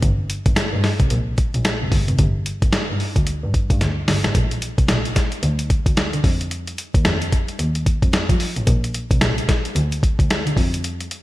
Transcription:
0.02 G1, kick, closed hi-hat
0.30 closed hi-hat
0.46 G1, kick, closed hi-hat
0.56 G2, snare, closed hi-hat
0.73 G2
0.84 snare, open hi-hat
1.00 C2, kick, closed hi-hat
1.10 A#1, closed hi-hat
1.38 kick, closed hi-hat
1.54 A#1, closed hi-hat
1.65 snare, closed hi-hat
1.82 F1
1.92 G1, kick, open hi-hat
2.08 F1, closed hi-hat
2.19 G1, kick, closed hi-hat
2.46 closed hi-hat
2.62 G1, kick, closed hi-hat
2.73 G2, snare, closed hi-hat
2.90 G2
3.00 open hi-hat
3.16 D2, kick, closed hi-hat
3.27 closed hi-hat
3.43 G2
3.54 kick, closed hi-hat
3.70 G2, kick, closed hi-hat
3.81 D2, snare, closed hi-hat
4.08 G1, snare, open hi-hat
4.24 A1, snare, closed hi-hat
4.35 A#1, kick, closed hi-hat
4.51 closed hi-hat
4.62 closed hi-hat
4.78 C2, kick, closed hi-hat
4.88 A#1, snare, closed hi-hat
5.05 closed hi-hat
5.16 kick, snare, closed hi-hat
5.32 closed hi-hat
5.43 D2, closed hi-hat
5.59 closed hi-hat
5.70 kick, closed hi-hat
5.86 D2, kick, closed hi-hat
5.97 snare, closed hi-hat
6.13 D3, closed hi-hat
6.24 F2, kick, open hi-hat
6.41 closed hi-hat
6.51 closed hi-hat
6.67 closed hi-hat
6.78 closed hi-hat
6.94 D#2, kick, closed hi-hat
7.05 F2, snare, closed hi-hat
7.22 closed hi-hat
7.32 kick, closed hi-hat
7.48 closed hi-hat
7.59 D#2, closed hi-hat
7.75 closed hi-hat
7.86 kick, closed hi-hat
8.02 F2, kick, closed hi-hat
8.13 snare, closed hi-hat
8.29 F3, kick, closed hi-hat
8.40 open hi-hat
8.56 A1, closed hi-hat
8.67 A#1, kick, closed hi-hat
8.84 closed hi-hat
8.94 closed hi-hat
9.11 C2, kick, closed hi-hat
9.21 A#1, snare, closed hi-hat
9.38 closed hi-hat
9.49 kick, snare, closed hi-hat
9.65 closed hi-hat
9.75 D2, closed hi-hat
9.92 closed hi-hat
10.03 kick, closed hi-hat
10.19 D2, kick, closed hi-hat
10.30 snare, closed hi-hat
10.46 D3, closed hi-hat
10.57 F2, kick, open hi-hat
10.74 closed hi-hat
10.84 closed hi-hat
11.01 closed hi-hat
11.11 closed hi-hat

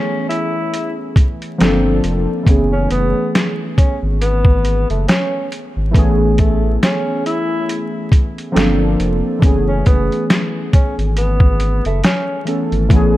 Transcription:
Already playing: E3 A3 B3 C#4 G#4
0.29 E4, closed hi-hat
0.74 closed hi-hat
1.16 kick, closed hi-hat
1.42 closed hi-hat
1.58 G1 F3 A#3 C4 D4 A4, snare, closed hi-hat
2.04 F1, closed hi-hat
2.43 F#1 E3 A3 B3, kick
2.47 C#4 G#4, closed hi-hat
2.72 C#4
2.90 F#1 B3, closed hi-hat
3.35 snare, closed hi-hat
3.78 C#4, kick, closed hi-hat
4.02 G#1
4.21 B3, closed hi-hat
4.45 kick
4.65 closed hi-hat
4.90 F#1 A3, closed hi-hat
5.08 C#4, snare, closed hi-hat
5.52 closed hi-hat
5.76 G#1
5.91 A1 E3 A3 B3, kick
5.96 C#4 G#4, closed hi-hat
6.38 A3, kick, closed hi-hat
6.83 C#4, snare, closed hi-hat
7.26 E4, closed hi-hat
7.69 closed hi-hat
8.12 kick, closed hi-hat
8.38 closed hi-hat
8.52 G1 F3 A#3 C4 D4 A4
8.56 snare, closed hi-hat
8.99 F1, closed hi-hat
9.39 F#1 E3 A3 B3, kick
9.43 C#4 G#4, closed hi-hat
9.68 C#4
9.86 F#1 B3, kick, closed hi-hat
10.12 closed hi-hat
10.30 snare, closed hi-hat
10.73 C#4, kick, closed hi-hat
10.98 G#1, closed hi-hat
11.17 B3, closed hi-hat
11.40 kick
11.60 closed hi-hat
11.85 F#1 A3, closed hi-hat
12.04 C#4, snare, closed hi-hat
12.45 E3 A3 B3 C#4 A4, closed hi-hat
12.72 G#1, closed hi-hat
12.89 A1 E3 A3 B3, kick, closed hi-hat
12.94 C#4 G#4

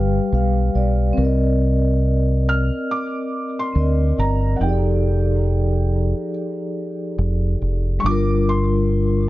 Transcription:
Already playing: G1 G3 G4 B4 F5 G5 F6
0.32 B1 F5
0.75 B1 D5
1.13 C4 A#4
1.18 C2 D5
1.25 D#5
2.49 F6
2.91 D6
3.59 C6
3.73 D2 C4 A#4
3.77 D5 D#5
4.19 G1 A#5
4.56 F3 D#4 F#5
4.61 F1 G4 G5
4.66 G#4 D5
4.73 A4
7.18 F1
7.62 F1
7.99 G3 C#6
8.03 G1 D4 F4 D6
8.11 A#4
8.49 C6

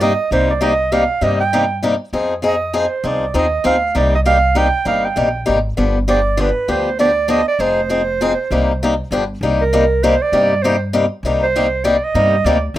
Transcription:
Already playing: G2
0.00 C3 G3 A#3 D#4 G4 D#5
0.31 C2 C3 G3 A#3 D#4 G4 C5
0.51 D5
0.61 C3 G3 A#3 D#4 G4 D#5
0.92 C3 G3 A#3 D#4 G4 F5
1.21 G2 C3 G3 A#3 D#4 G4 D#5
1.41 G5
1.53 C3 G3 A#3 D#4 G4
1.83 C3 G3 A#3 D#4 G4
2.13 F2 F3 C4 D#4 G#4
2.42 F3 C4 D#4 G#4
2.48 D#5
2.73 F3 C4 D#4 G#4 C5
3.04 C2 F3 C4 D#4 G#4 D5
3.34 D#2 F3 C4 D#4 G#4
3.39 D#5
3.64 D2 F3 C4 D#4 G#4 F5
3.95 C2 C3 G3 A#3 D#4 G4 D5
4.15 D#5
4.25 C3 G3 A#3 D#4 G4 F5
4.55 C3 G3 A#3 D#4 G4 G5
4.85 G1 C3 G3 A#3 D#4 G4 F5
5.05 G5
5.16 A#1 C3 G3 A#3 D#4 G4
5.46 G#1 C3 G3 A#3 D#4 G4
5.77 G1 D3 F3 B3 D4 G4
6.08 D3 F3 B3 D4 G4 D5
6.37 D3 F3 B3 D4 G4 B4
6.68 D2 D3 F3 B3 D4 G4 C5
6.99 D3 F3 B3 D4 G4 D5
7.28 D3 F3 B3 D4 G4 D#5
7.48 D5
7.59 F1 F3 C4 D#4 G#4 C5
7.89 F3 C4 D#4 G#4
8.21 F3 C4 D#4 G#4
8.51 C2 C3 G3 A#3 D#4 G4
8.83 C3 G3 A#3 D#4 G4
9.11 G1 D3 F3 B3 D4 G4
9.41 C2 C3 G3 A#3 D#4 G4
9.61 A#4
9.73 C3 G3 A#3 D#4 G4
10.03 C3 G3 A#3 D#4 G4 C5
10.22 D5
10.32 G2 C3 G3 A#3 D#4 G4
10.63 C3 G3 A#3 D#4 G4 C5
10.93 C3 G3 A#3 D#4 G4
11.23 C2 C3 G3 A#3 D#4 G4
11.43 C5
11.56 C3 G3 A#3 D#4 G4
11.84 C3 G3 A#3 D#4 G4 D5
12.04 D#5
12.14 G2 C3 G3 A#3 D#4 G4
12.44 D2 C3 G3 A#3 D#4 G4 D5
12.74 D#2

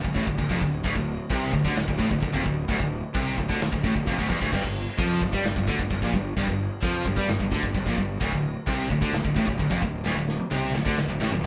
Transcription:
0.04 D1 D2, kick
0.15 A1 A2, kick
0.27 D1 D2, kick
0.39 D1 D2, kick, china
0.50 F1 F2, kick
0.61 D1 D2, kick
0.84 D1 D2, kick, china
0.96 D1 D2, kick
1.30 C2 C3, kick, china
1.53 D1 D2, kick
1.65 D2 D3, kick
1.75 D1 D2, snare, china
1.87 D1 D2, kick
1.98 A1 A2, kick
2.09 D1 D2, kick
2.20 D1 D2, kick, china
2.33 F1 F2, kick
2.44 D1 D2, kick
2.68 D1 D2, kick, china
2.80 D1 D2, kick
3.14 C2 C3, kick, china
3.38 D1 D2, kick
3.49 D2 D3, kick
3.61 D1 D2, snare, china
3.72 D1 D2, kick
3.84 A1 A2, kick
3.96 D1 D2, kick
4.07 F1 F2, kick, china
4.18 D1 D2, kick
4.30 E1 E2, kick
4.40 D1 D2, kick
4.52 G1 G2, kick, crash, china
4.64 G1 G2, kick
4.98 F2 F3, kick, china
5.21 G1 G2, kick
5.33 G2 G3, kick
5.44 G1 G2, snare, china
5.56 G1 G2, kick
5.68 D2 D3, kick
5.79 G1 G2, kick
5.90 G1 G2, kick, china
6.02 A#1 A#2, kick
6.14 G1 G2, kick
6.36 G1 G2, kick, china
6.48 G1 G2, kick
6.83 F2 F3, kick, china
7.05 G1 G2, kick
7.16 G2 G3, kick
7.27 G1 G2, snare, china
7.39 G1 G2, kick
7.51 D2 D3, kick
7.63 G1 G2, kick
7.74 G1 G2, kick, china
7.86 A#1 A#2, kick
7.97 G1 G2, kick
8.20 D1 D2, kick, china
8.31 D1 D2, kick
8.67 C2 C3, kick, china
8.89 D1 D2, kick
9.01 D2 D3, kick
9.13 D1 D2, snare, china
9.24 D1 D2, kick
9.36 A1 A2, kick
9.47 D1 D2, kick
9.58 D1 D2, kick, china
9.70 F1 F2, kick
9.81 D1 D2, kick
10.04 D1 D2, snare
10.16 D1 D2
10.29 snare
10.40 high tom
10.50 C2 C3, mid tom
10.74 D1 D2, snare
10.85 D2 D3, kick
10.98 D1 D2, snare
11.09 D1 D2
11.20 A1 A2, snare
11.32 D1 D2, mid tom

